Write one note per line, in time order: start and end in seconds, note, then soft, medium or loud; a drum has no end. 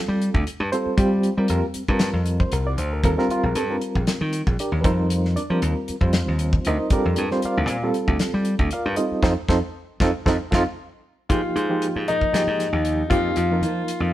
0.00 0.47 G3 medium
0.00 0.47 C4 medium
0.00 0.47 F4 medium
0.00 0.47 A4 medium
0.08 0.28 G3 medium
0.22 closed hi-hat medium
0.34 0.43 D2 medium
0.34 kick medium
0.46 muted slap bass stroke soft
0.46 closed hi-hat medium
0.60 0.69 G2 medium
0.72 0.95 G3 medium
0.72 0.97 C4 medium
0.72 0.95 F4 medium
0.72 0.96 A4 medium
0.72 1.46 C5 loud
0.72 closed hi-hat medium
0.86 muted slap bass stroke soft
0.97 1.28 G3 medium
0.97 1.32 G3 medium
0.97 1.32 C4 medium
0.97 1.33 F4 medium
0.97 1.33 G4 medium
0.97 kick loud
0.97 closed hi-hat medium
1.23 closed hi-hat medium
1.37 1.82 G3 medium
1.37 1.47 G3 medium
1.37 1.82 C4 medium
1.37 1.49 F4 medium
1.37 1.49 A#4 medium
1.48 1.60 F2 medium
1.48 1.66 A#3 medium
1.48 1.66 F4 medium
1.48 1.66 G4 medium
1.48 1.65 A#4 medium
1.48 closed hi-hat medium
1.74 muted slap bass stroke soft
1.74 closed hi-hat medium
1.88 2.09 G2 medium
1.88 2.77 G3 medium
1.88 2.77 C4 medium
1.88 2.78 F4 medium
1.88 2.52 A#4 medium
1.88 kick medium
1.99 snare loud
1.99 closed hi-hat medium
2.13 2.43 F2 medium
2.26 closed hi-hat medium
2.40 2.52 C5 medium
2.40 kick medium
2.52 2.76 C2 medium
2.52 2.67 A#4 medium
2.52 closed hi-hat medium
2.67 2.78 D5 medium
2.77 3.01 D2 medium
2.77 2.92 C5 medium
2.77 closed hi-hat medium
2.93 3.04 A#4 medium
3.04 3.15 D#2 medium
3.04 3.16 G3 medium
3.04 3.16 C4 medium
3.04 3.17 F4 medium
3.04 3.19 A4 medium
3.04 3.17 A#4 medium
3.04 kick loud
3.04 closed hi-hat medium
3.18 3.62 G3 medium
3.18 3.62 C4 medium
3.18 3.31 D4 medium
3.18 3.30 F4 medium
3.18 3.45 A#4 medium
3.18 snare soft
3.28 3.44 F4 medium
3.28 muted slap bass stroke soft
3.28 closed hi-hat medium
3.43 3.53 A#1 medium
3.43 3.56 A#4 medium
3.55 3.75 G2 medium
3.55 3.70 A4 medium
3.55 closed hi-hat medium
3.70 4.58 G3 medium
3.70 4.58 C4 medium
3.70 3.78 D4 medium
3.70 4.58 F4 medium
3.70 4.58 A#4 medium
3.81 closed hi-hat medium
3.95 4.05 A#1 medium
3.95 kick medium
4.07 snare loud
4.07 closed hi-hat medium
4.21 4.41 D#3 medium
4.33 closed hi-hat medium
4.47 4.56 A#1 medium
4.47 kick medium
4.58 4.84 D4 medium
4.58 4.85 G4 medium
4.58 4.84 A#4 medium
4.58 4.85 D5 medium
4.58 muted slap bass stroke soft
4.58 closed hi-hat medium
4.72 4.81 D#2 medium
4.81 5.35 F2 medium
4.81 5.40 G3 medium
4.81 5.40 C4 medium
4.81 5.41 F4 medium
4.81 4.84 B4 medium
4.81 kick loud
4.81 closed hi-hat medium
4.85 5.33 D#4 medium
4.85 5.41 A#4 medium
4.85 5.33 C5 medium
5.10 closed hi-hat medium
5.25 snare soft
5.36 5.62 D4 medium
5.36 5.61 D5 medium
5.36 closed hi-hat medium
5.50 5.59 F3 medium
5.50 5.94 G3 medium
5.50 5.94 C4 medium
5.50 5.95 F4 medium
5.50 5.95 A#4 medium
5.62 5.73 D#2 loud
5.62 closed hi-hat medium
5.88 muted slap bass stroke soft
5.88 closed hi-hat medium
6.01 6.21 F2 medium
6.01 6.90 G3 medium
6.01 6.90 C4 medium
6.01 6.90 F4 medium
6.01 6.67 C5 medium
6.01 kick medium
6.13 snare loud
6.13 closed hi-hat medium
6.28 6.57 D#2 medium
6.39 closed hi-hat medium
6.53 kick medium
6.65 6.77 D2 medium
6.65 6.92 D#4 medium
6.65 6.92 A#4 medium
6.65 6.92 C5 medium
6.65 6.91 D#5 medium
6.65 closed hi-hat medium
6.90 7.25 G3 medium
6.90 7.25 C4 medium
6.90 7.40 D4 medium
6.90 7.26 F4 medium
6.90 7.26 G4 medium
6.90 7.40 A4 medium
6.90 7.40 A#4 medium
6.90 7.40 D5 medium
6.90 muted slap bass stroke soft
6.90 kick loud
6.90 closed hi-hat medium
7.05 7.14 F2 medium
7.16 7.28 G2 medium
7.16 closed hi-hat medium
7.31 7.75 G3 medium
7.31 7.75 C4 medium
7.31 7.44 F4 medium
7.31 7.76 C5 medium
7.31 snare soft
7.42 7.69 F4 medium
7.42 7.69 A#4 medium
7.42 7.69 D5 medium
7.42 7.69 F5 loud
7.42 muted slap bass stroke soft
7.42 closed hi-hat medium
7.57 7.66 D2 medium
7.68 7.89 A#2 loud
7.68 closed hi-hat medium
7.83 8.71 G3 medium
7.83 8.71 C4 medium
7.83 8.71 F4 medium
7.83 8.72 A4 medium
7.94 closed hi-hat medium
8.07 8.17 D2 medium
8.07 kick medium
8.19 snare loud
8.19 closed hi-hat medium
8.34 8.54 G3 medium
8.45 closed hi-hat medium
8.59 8.68 D2 medium
8.59 kick medium
8.71 8.97 F4 medium
8.71 8.98 A#4 medium
8.71 8.98 D5 medium
8.71 8.97 F5 medium
8.71 muted slap bass stroke soft
8.71 closed hi-hat medium
8.86 8.95 G2 medium
8.96 9.20 G3 medium
8.96 9.21 C4 medium
8.96 9.21 D#4 medium
8.96 9.21 F4 medium
8.96 9.21 A4 medium
8.96 9.21 C5 medium
8.96 9.21 D#5 medium
8.96 closed hi-hat medium
9.12 muted slap bass stroke soft
9.22 9.33 F2 medium
9.22 9.33 C4 loud
9.22 9.33 D#4 loud
9.22 9.32 F4 loud
9.22 9.32 A4 medium
9.22 9.32 C5 loud
9.22 kick medium
9.22 snare medium
9.48 9.59 F2 medium
9.48 9.59 C4 loud
9.48 9.59 D#4 medium
9.48 9.58 F4 loud
9.48 9.58 A4 loud
9.48 9.58 C5 loud
9.48 kick medium
9.48 snare medium
10.00 10.11 F2 medium
10.00 10.11 C4 medium
10.00 10.10 D#4 medium
10.00 10.10 F4 loud
10.00 10.10 A4 medium
10.00 10.10 C5 loud
10.00 kick loud
10.00 snare medium
10.26 10.37 F2 medium
10.26 10.37 C4 loud
10.26 10.37 D#4 loud
10.26 10.35 F4 medium
10.26 10.35 A4 loud
10.26 10.35 C5 medium
10.26 kick medium
10.26 snare medium
10.51 10.63 F2 loud
10.51 10.63 D#4 loud
10.51 10.54 F4 medium
10.51 10.63 F4 loud
10.51 10.61 A4 medium
10.51 10.61 C5 medium
10.51 kick medium
10.51 snare medium
10.55 10.63 C4 loud
11.29 11.41 G#2 medium
11.29 11.64 F3 medium
11.29 11.64 A#3 medium
11.29 11.64 D#4 medium
11.29 12.03 F4 medium
11.29 11.65 G4 medium
11.29 kick medium
11.29 closed hi-hat medium
11.56 11.86 G#2 medium
11.56 closed hi-hat medium
11.69 12.03 F3 medium
11.69 12.03 A#3 medium
11.69 12.03 D#4 medium
11.69 12.03 G4 medium
11.82 closed hi-hat medium
11.96 12.16 G#2 medium
12.08 12.31 F3 medium
12.08 12.31 A#3 medium
12.08 13.14 D#4 medium
12.08 12.31 D#4 medium
12.08 12.31 A#4 medium
12.08 closed hi-hat medium
12.21 kick medium
12.33 12.44 G#2 medium
12.33 13.09 F3 medium
12.33 13.10 A#3 medium
12.33 13.10 D#4 medium
12.33 13.11 G4 medium
12.33 snare medium
12.33 closed hi-hat medium
12.47 12.67 G#2 medium
12.60 snare soft
12.60 closed hi-hat medium
12.73 13.02 D#2 medium
12.85 closed hi-hat medium
13.10 13.30 F2 medium
13.10 13.45 F3 medium
13.10 13.45 A#3 medium
13.10 13.45 D#4 medium
13.10 14.13 F4 loud
13.10 13.46 G4 medium
13.10 kick medium
13.10 closed hi-hat medium
13.36 13.63 F2 medium
13.36 closed hi-hat medium
13.51 14.13 F3 medium
13.51 14.13 A#3 medium
13.51 14.13 D#4 medium
13.51 14.13 A#4 medium
13.61 13.82 F3 medium
13.61 closed hi-hat medium
13.88 closed hi-hat medium
14.00 14.13 F2 medium